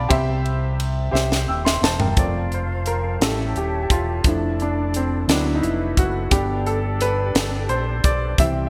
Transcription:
Already playing: G2 D4 F4 G4 B4 D5 F5 A5 B5 D6
0.09 C2 C3 G4 C5 E5, kick, ride
0.46 ride
0.80 ride
1.11 C2 G4 C5 E5, snare
1.32 snare
1.48 D#1 G5 E6
1.65 E5 C6, snare
1.82 E1 C5 A5, snare
2.00 A#4 G5, floor tom
2.16 F1 F3 A3 C4 F4 C5 D5 F5 A5, kick, closed hi-hat
2.52 C5, closed hi-hat
2.86 A#4, closed hi-hat
3.20 A1 G3 C#4 E4 G4 A4 C#5 E5, snare, closed hi-hat
3.55 D#1 G4, closed hi-hat
3.83 G4
3.90 E1 F4, kick, closed hi-hat
4.23 F1 F3 A3 D4 A4 D5, kick, closed hi-hat
4.28 E4
4.60 D4, closed hi-hat
4.94 C4, closed hi-hat
5.28 D2 F#3 B3 C4 D4 E4 F#4 A4 B4, snare, closed hi-hat
5.56 D#4
5.62 F1 E4, closed hi-hat
5.97 F#1 F#4, kick, closed hi-hat
6.30 G1 G3 B3 D4 G4 D5, kick, closed hi-hat
6.66 A4, closed hi-hat
7.01 B4, closed hi-hat
7.35 G1, snare, closed hi-hat
7.69 A#1 C5, closed hi-hat
8.04 B1 D5, kick, closed hi-hat
8.37 C2 E3 G3 C4 C5 E5 G5, kick, closed hi-hat

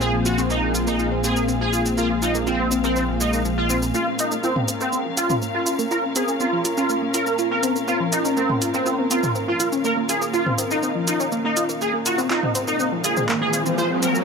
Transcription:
Already playing: A#1 A#3 C4 F4 G#4 F5
0.01 C4 G#4, shaker
0.14 F3
0.25 F4 F#4, shaker
0.38 C4, shaker
0.50 A#3 D#4, shaker
0.63 A#3
0.75 F4, shaker
0.87 A#3 D#4, shaker
0.99 F4, shaker
1.12 C4
1.24 C4 G#4, shaker
1.36 A#4, shaker
1.48 C4, shaker
1.61 F3 G#4
1.73 F4, shaker
1.86 C4, shaker
1.98 A#3 F4, shaker
2.10 A#3
2.22 D#4 F4, shaker
2.35 A#3, shaker
2.47 C4 F4, shaker
2.59 C4
2.71 C4, shaker
2.84 C4 A#4, shaker
2.96 C4, shaker
3.09 F3
3.21 G#3 D#4, shaker
3.33 A#3, shaker
3.45 F3, shaker
3.58 F4
3.70 C4, shaker
3.82 A#3, shaker
3.94 A#3 C#4 F4 C#5, shaker
4.07 A#3
4.15 A#4
4.19 D#4 F4, closed hi-hat, shaker
4.31 A#3, shaker
4.44 C4 F4, shaker
4.56 C4, mid tom
4.68 C4, closed hi-hat, shaker
4.81 C4 A#4, shaker
4.93 C4, shaker
5.05 F3
5.17 F4, closed hi-hat, shaker
5.30 C#4, mid tom, shaker
5.42 A#3, shaker
5.54 A#3 F4
5.66 F4, closed hi-hat, shaker
5.79 A#3, shaker
5.91 F4 A#4, shaker
6.04 C4
6.16 C4 G#4, closed hi-hat, shaker
6.28 A#4, shaker
6.40 C4 F4, shaker
6.53 F3
6.65 F4, closed hi-hat, shaker
6.77 C#4 F4, shaker
6.90 A#3, shaker
7.02 A#3
7.14 F4 A#4, closed hi-hat, shaker
7.27 A#3, shaker
7.39 F4, shaker
7.51 C4 A#4
7.63 C4, closed hi-hat, shaker
7.76 A#4, shaker
7.88 C4 D#4 F4, shaker
8.00 F3
8.12 D#4 F4, closed hi-hat, shaker
8.25 C#4, shaker
8.37 A#3 C4, shaker
8.49 A#3, mid tom
8.61 F4, closed hi-hat, shaker
8.74 A#3 C4, shaker
8.86 F4, shaker
8.99 C4
9.11 C4 F4, closed hi-hat, shaker
9.23 A#4, mid tom, shaker
9.35 C4, shaker
9.48 F3 F4
9.60 F4, closed hi-hat, shaker
9.72 C#4, shaker
9.85 A#3 A#4, shaker
9.97 A#3
10.09 F4 G#4, closed hi-hat, shaker
10.22 A#3, shaker
10.34 F4, shaker
10.46 C4, mid tom
10.58 C4, closed hi-hat, shaker
10.71 D#4 A#4, shaker
10.83 C4, shaker
10.95 F3
11.07 D#4 F4, closed hi-hat, shaker
11.20 C#4, shaker
11.32 A#3, shaker
11.45 A#3 D#4
11.57 F4, closed hi-hat, shaker
11.69 A#3, shaker
11.81 A#2 A#3 F4 G#4, riser, shaker
11.94 A#3
12.06 F4 F#4, closed hi-hat, shaker
12.18 C4, shaker
12.22 C4
12.30 D#4 F4, clap, shaker
12.43 C4, mid tom
12.55 C4, closed hi-hat, shaker
12.68 D#4 A#4, shaker
12.80 C4, shaker
12.92 F3
13.04 F4 G#4, closed hi-hat, shaker
13.14 C4 G#4, mid tom, shaker
13.29 A#3, clap, shaker
13.41 A#3 G#4
13.53 F4, closed hi-hat, shaker
13.66 C4, shaker
13.78 F4 C5, shaker
13.91 C4
14.03 C4 A#4, closed hi-hat, shaker
14.15 A#4, shaker

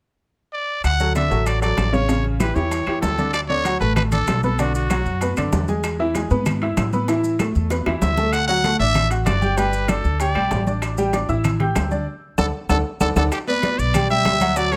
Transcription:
0.53 D5
0.84 D2 F#5, high bongo, high conga, high timbale, claves, maracas
1.00 F#3 F#4 A4, high conga, maracas
1.15 D3 D4 D5 E5, high bongo, high conga, high timbale, low timbale, maracas
1.31 A1 F#3 F#4 A4, maracas
1.46 D5, high bongo, high conga, high timbale, claves, maracas
1.62 F#3 F#4 A4 D5, high conga, high timbale, maracas
1.77 A1, high bongo, low bongo, high conga, high timbale, low timbale, claves, maracas
1.93 C#3 C#4 C#5, high conga, maracas
2.08 C#3 C#4 C#5, high bongo, high timbale, maracas
2.24 high bongo, high conga
2.40 E3 E4 G4 B4, high bongo, high conga, high timbale, low timbale, claves, maracas
2.55 E2 E3 E4 G4 C#5, high bongo, maracas
2.71 high bongo, high conga, high timbale, maracas
2.87 E2 E3 E4 G4, high bongo, high conga, high timbale, claves
3.01 D2 A4, high bongo, low bongo, high conga, low timbale, maracas
3.18 D3 D4 D5, high conga, maracas
3.33 D5, high bongo, high conga, high timbale, claves, maracas
3.48 D3 D4 C#5 D5, high conga
3.65 F#3 F#4 F#5, high bongo, high conga, high timbale, low timbale, maracas
3.80 A1 A3 A4 B4 A5, maracas
3.96 B4, high bongo, high conga, low conga, high timbale, claves, maracas
4.12 D4 A4 D5 D6, high conga, low conga, high timbale, maracas
4.27 B1, high bongo, low bongo, high conga, high timbale, low timbale, claves, maracas
4.43 B3 A4 B4 B5, high conga, maracas
4.59 D3 D4 F#4 D5, high bongo, high conga, high timbale, maracas
4.75 F#4, high bongo, high conga, maracas
4.90 F#3 F#4 F#5, high bongo, high conga, high timbale, low timbale, claves, maracas
5.06 F#2, high bongo, maracas
5.21 B3 B4 B5, high bongo, high conga, high timbale, maracas
5.37 F#2 D3 D4 D5, high bongo, high conga, high timbale, claves, maracas
5.52 E2, high bongo, low bongo, high conga, low timbale, maracas
5.68 G#3 G#4 G#5, high conga, maracas
5.84 high bongo, high conga, high timbale, claves, maracas
5.99 E3 E4 E5, high conga
6.15 G#3 G#4 G#5, high bongo, high conga, high timbale, low timbale, maracas
6.31 G#2 B3 B4 B5, maracas
6.46 high bongo, high conga, low conga, high timbale, claves, maracas
6.62 E4 E5 E6, high conga, high timbale
6.77 A2, high bongo, low bongo, high conga, high timbale, low timbale, claves, maracas
6.93 B3 B4 B5, high conga, maracas
7.08 E3 E4 E5, high bongo, high conga, high timbale, maracas
7.24 high bongo, high conga, maracas
7.39 A3 A4 A5, high bongo, high conga, high timbale, low timbale, claves, maracas
7.55 E2, high bongo, maracas
7.70 B3 B4 B5, high bongo, high conga, high timbale, maracas
7.86 E2 E3 E4 E5, high bongo, high conga, high timbale, claves
8.02 D2 E5, low bongo, high conga, low timbale, maracas
8.17 A3 A4 A5, low bongo, high conga, maracas
8.33 F#5, high bongo, high conga, high timbale, claves, maracas
8.48 F#3 F#4 F#5, high conga
8.64 A3 A4 A5, high bongo, high conga, high timbale, low timbale, maracas
8.79 A1 D4 D5 E5 D6, maracas
8.95 high bongo, high conga, low conga, high timbale, claves, maracas
9.11 F#4 F#5 F#6, high conga, high timbale, maracas
9.26 G1 D5, high bongo, low bongo, high conga, high timbale, low timbale, claves, maracas
9.42 G4 G5 G6, high conga, maracas
9.57 G3 G4 B4 G5, high bongo, high timbale, maracas
9.73 high bongo, high conga, maracas
9.88 D4 A4 D5 D6, high bongo, high conga, high timbale, low timbale, claves, maracas
10.04 D2, high bongo, maracas
10.20 G4 D5 G5 G6, high bongo, high conga, high timbale, maracas
10.35 B1 G3 G4 G5, high bongo, high conga, high timbale, claves
10.51 A1, high bongo, low bongo, high conga, low timbale, maracas
10.67 D4 D5 D6, high conga, maracas
10.82 high bongo, high conga, high timbale, claves, maracas
10.98 G3 G4 G5, high conga, maracas
11.13 D4 D5 D6, high bongo, high conga, high timbale, low timbale, maracas
11.29 A1 E4 E5 E6, maracas
11.44 high bongo, high conga, low conga, high timbale, claves, maracas
11.60 G4 G5 G6, high conga, low conga, high timbale
11.75 D2, high bongo, low bongo, high conga, high timbale, low timbale, claves, maracas
11.91 D4 D5 D6, high conga, maracas
12.38 D2 A4 D5 F#5, low bongo, high conga, high timbale, claves, maracas
12.69 D2 A4 D5 F#5, low bongo, high conga, high timbale, claves, maracas
13.00 D2 A4 D5 F#5, low bongo, high conga, high timbale, claves, maracas
13.16 D2 A4 D5 F#5, low bongo, high conga, high timbale, claves, maracas
13.32 G4, high bongo, high conga, high timbale, claves, maracas
13.47 B3 B4 D5, high bongo, high conga, maracas
13.63 B3 B4 D5, high bongo, high conga, high timbale, low timbale, maracas
13.78 B1 D5, high bongo, high conga, maracas
13.94 G3 G4 G5, high bongo, high conga, low conga, high timbale, claves, maracas
14.10 G3 G4 E5 G5, high bongo, high conga, maracas
14.25 D2, high bongo, low bongo, high conga, high timbale, low timbale, claves, maracas
14.40 F#3 F#4 F#5, high conga, high timbale, maracas
14.56 F#3 F#4 D5 F#5, high bongo, high conga, maracas
14.72 A3 A4 C#5, high conga, high timbale, maracas

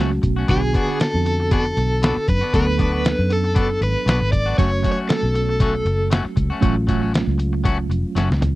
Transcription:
Already playing: C#2 F#3 A3 C#4 F#4
0.00 C#4 F#4
0.11 muted clean electric guitar stroke
0.22 B1, muted clean electric guitar stroke, kick, closed hi-hat
0.36 A3 C#4 F#4
0.47 B1 B2 D3 B3 D4 F#4 G#4, kick, closed hi-hat
0.62 muted clean electric guitar stroke
0.73 B2 B3 D4 F#4, kick, closed hi-hat
0.88 B3 D4 F#4
0.99 A4, muted clean electric guitar stroke, snare, closed hi-hat
1.14 F2
1.25 muted clean electric guitar stroke, closed hi-hat
1.40 muted clean electric guitar stroke
1.51 B2 B3 D4 F#4 A4, kick, closed hi-hat
1.65 muted clean electric guitar stroke
1.77 B1, muted clean electric guitar stroke, closed hi-hat
2.02 B2 B3 D4 F#4, snare, closed hi-hat
2.16 muted clean electric guitar stroke, muted fingered electric bass stroke
2.28 F#2 B4, muted clean electric guitar stroke, kick, closed hi-hat
2.41 B3 D4 F#4, muted fingered electric bass stroke
2.53 D2 B2 F#3 B3 D4 F#4 A4 B4, kick, closed hi-hat
2.67 muted clean electric guitar stroke
2.78 B2 B3 D4 F#4, kick, closed hi-hat
2.92 B3 D4 F#4
3.05 snare, closed hi-hat
3.19 F#2
3.30 A4, muted clean electric guitar stroke, closed hi-hat
3.44 muted clean electric guitar stroke
3.55 B2 B3 D4 F#4, kick, closed hi-hat
3.81 G#1 B4, muted clean electric guitar stroke, closed hi-hat
4.06 B1 B2 B3 D4 F#4 B4, snare, closed hi-hat
4.21 G#1, muted clean electric guitar stroke
4.32 D5, muted clean electric guitar stroke, kick, closed hi-hat
4.46 B3 D4 F#4
4.58 F#1 F#3 A3 C#4 F#4 C#5, kick, closed hi-hat
4.71 muted clean electric guitar stroke
4.83 F#3 A3 C#4 F#4, kick, closed hi-hat
4.92 C#5
4.97 A3 C#4 F#4
5.08 A4, muted clean electric guitar stroke, snare, closed hi-hat
5.23 B1
5.34 muted clean electric guitar stroke, closed hi-hat
5.49 muted clean electric guitar stroke
5.60 F#3 A3 C#4 F#4, kick, closed hi-hat
5.75 muted clean electric guitar stroke
5.85 F#1, muted clean electric guitar stroke, closed hi-hat
6.10 F#3 A3 C#4 F#4, snare, closed hi-hat
6.25 muted clean electric guitar stroke, muted fingered electric bass stroke
6.36 C#2, muted clean electric guitar stroke, kick, closed hi-hat
6.50 A3 C#4 F#4, muted fingered electric bass stroke
6.61 A1 F#3 A3 C#4 F4 F#4, kick, closed hi-hat
6.87 F#3 A3 C#4 F#4, kick, closed hi-hat
7.01 A3 C#4 F#4
7.13 muted clean electric guitar stroke, snare, closed hi-hat
7.27 C#2
7.38 muted clean electric guitar stroke, closed hi-hat
7.53 muted clean electric guitar stroke
7.64 F#3 A3 C#4 F#4, kick, closed hi-hat
7.79 muted clean electric guitar stroke
7.89 F1, muted clean electric guitar stroke, closed hi-hat
8.15 F#1 F#3 A3 C#4 F#4, snare, closed hi-hat
8.30 C#2, muted clean electric guitar stroke, snare
8.41 muted clean electric guitar stroke, closed hi-hat, mid tom

